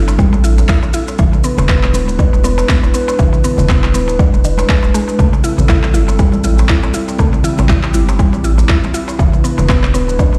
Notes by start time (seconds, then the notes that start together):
Already playing: G1 G3 C4 D4 A4
0.08 darbuka tek, shaker
0.18 G3, kick, darbuka ka, high conga, low conga, shaker
0.33 A1, muted conga, darbuka tek, shaker
0.44 E4, shaker
0.58 high conga, darbuka tek, shaker
0.69 E4, kick, clap, muted conga, high conga, shaker
0.83 A1, darbuka tek, shaker
0.94 E4, shaker
1.08 darbuka ka, darbuka tek, shaker
1.19 E1 E3 G#3 D4 E4 B4, kick, muted conga, darbuka dum, shaker
1.33 darbuka tek, shaker
1.44 B3, shaker
1.58 E1, muted conga, high conga, darbuka tek, low conga, darbuka dum, shaker
1.69 B3, kick, clap, shaker
1.83 clap, darbuka tek, shaker
1.93 D1 B3, muted conga, high conga, shaker
2.08 darbuka tek, shaker
2.19 D3, kick, high conga, shaker
2.33 E1, muted conga, darbuka tek, shaker
2.44 B3, high conga, shaker
2.58 darbuka tek, shaker
2.69 B3, kick, clap, muted conga, high conga, shaker
2.83 E1, darbuka ka, darbuka tek, shaker
2.94 B3, shaker
3.08 darbuka ka, darbuka tek, shaker
3.19 E1 E3, kick, muted conga, darbuka dum, shaker
3.33 darbuka tek, shaker
3.44 B3, low conga, shaker
3.58 E1, muted conga, high conga, darbuka tek, low conga, darbuka dum, shaker
3.69 B3, kick, clap, shaker
3.83 clap, darbuka ka, darbuka tek, shaker
3.94 D1 B3, muted conga, high conga, shaker
4.08 darbuka tek, shaker
4.19 D3, kick, darbuka ka, high conga, low conga, shaker
4.34 E1, muted conga, darbuka tek, shaker
4.45 D3, shaker
4.58 darbuka ka, high conga, darbuka tek, shaker
4.69 G#3, kick, clap, muted conga, high conga, shaker
4.83 D1, darbuka tek, high conga, shaker
4.94 G#3, shaker
5.08 darbuka ka, darbuka tek, shaker
5.19 A1 G3 A3 C4 E4 A4, kick, muted conga, darbuka dum, shaker
5.33 darbuka tek, shaker
5.44 E4, shaker
5.58 A1, muted conga, darbuka tek, high conga, darbuka dum, low conga, shaker
5.69 E4, kick, clap, shaker
5.83 clap, darbuka tek, shaker
5.93 G1 E4, muted conga, high conga, shaker
6.08 darbuka tek, shaker
6.19 G3, kick, high conga, shaker
6.32 A1, muted conga, darbuka tek, shaker
6.44 E4, high conga, shaker
6.58 darbuka tek, shaker
6.68 E4, kick, clap, muted conga, high conga, shaker
6.83 A1, darbuka ka, darbuka tek, shaker
6.94 E4, shaker
7.08 darbuka ka, darbuka tek, shaker
7.18 A1 A3 G4, kick, muted conga, darbuka dum, shaker
7.33 darbuka tek, shaker
7.43 E4, low conga, shaker
7.58 A1, muted conga, high conga, darbuka tek, low conga, darbuka dum, shaker
7.69 E4, kick, clap, shaker
7.83 clap, darbuka ka, darbuka tek, shaker
7.93 G1 E4, muted conga, high conga, shaker
8.09 darbuka tek, shaker
8.19 G3, kick, darbuka ka, high conga, low conga, shaker
8.33 A1, muted conga, darbuka tek, shaker
8.44 E4, shaker
8.58 darbuka tek, high conga, shaker
8.69 E4, kick, clap, muted conga, high conga, shaker
8.84 A1, darbuka tek, shaker
8.94 E4, shaker
9.08 darbuka ka, darbuka tek, shaker
9.19 E1 E3 G#3 D4 B4, kick, muted conga, darbuka dum, shaker
9.33 darbuka tek, shaker
9.44 B3, shaker
9.58 E1, muted conga, darbuka tek, high conga, darbuka dum, low conga, shaker
9.69 B3, kick, clap, shaker
9.83 clap, darbuka tek, shaker
9.94 D1 B3, muted conga, high conga, shaker
10.08 darbuka tek, shaker
10.19 D3, kick, high conga, shaker
10.33 E1, muted conga, darbuka tek, shaker